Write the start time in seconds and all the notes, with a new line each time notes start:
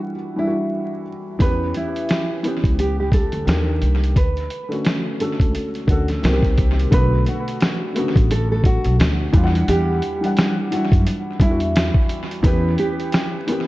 Already playing: E3 G3 D4 E4 F#5
0.36 E3 G3 D4 E4
0.41 E4
0.47 F#4
1.39 E2 E3 B3 C#4 B4, kick, closed hi-hat
1.43 G4
1.74 E4, closed hi-hat
1.96 closed hi-hat
2.09 snare, closed hi-hat
2.43 E3 B3 C#4, closed hi-hat
2.48 G4
2.64 C#2, kick, closed hi-hat
2.79 G4, closed hi-hat
3.00 G4
3.12 A4, kick, closed hi-hat
3.32 D2, closed hi-hat
3.45 D#2 D#3 A#3 D4, snare, closed hi-hat
3.50 G4
3.82 C2, closed hi-hat
4.04 closed hi-hat
4.16 D2 B4, kick, closed hi-hat
4.37 closed hi-hat
4.50 closed hi-hat
4.69 D3 A3 C#4, closed hi-hat
4.73 F#4
4.85 snare, closed hi-hat
5.19 D3 A3 C#4 A4, closed hi-hat
5.24 F#4
5.40 C#2, kick, closed hi-hat
5.55 closed hi-hat
5.75 closed hi-hat
5.87 D2 D3 A3 C#4 F#4, kick, closed hi-hat
5.92 A4
6.08 snare, closed hi-hat
6.22 C2 D#3 A#3 C4, snare, closed hi-hat
6.27 F#4
6.33 G4
6.43 kick, closed hi-hat
6.58 kick, closed hi-hat
6.79 closed hi-hat
6.90 B1 D3 A3 B3 B4, kick, closed hi-hat
6.95 F#4
7.26 F#4, closed hi-hat
7.48 closed hi-hat
7.61 snare, closed hi-hat
7.93 C#3 A3 B3, closed hi-hat
7.98 D3 F#4
8.16 A1, kick, closed hi-hat
8.31 A4, closed hi-hat
8.52 A4
8.64 F#4, kick, closed hi-hat
8.84 B1, closed hi-hat
8.99 D2, snare, closed hi-hat
9.32 E2 E3 G3 D4, kick, closed hi-hat
9.37 F4
9.44 F#5
9.55 closed hi-hat
9.68 E2 G4, closed hi-hat
10.02 closed hi-hat
10.21 E3 G3 D4, closed hi-hat
10.25 F#5
10.37 snare, closed hi-hat
10.71 E3 G3 D4 F#4, closed hi-hat
10.76 E4
10.92 F#2, kick, closed hi-hat
11.07 closed hi-hat
11.40 E2 E3 G3 D4 E4, kick, closed hi-hat
11.44 E4
11.51 F#4
11.60 closed hi-hat
11.76 snare, closed hi-hat
11.94 kick
12.09 closed hi-hat
12.31 closed hi-hat
12.43 E2 E3 B3 C#4 B4, kick, closed hi-hat
12.47 G4
12.78 G4, closed hi-hat
13.00 closed hi-hat
13.12 snare, closed hi-hat
13.47 E3 B3 C#4, closed hi-hat
13.52 G4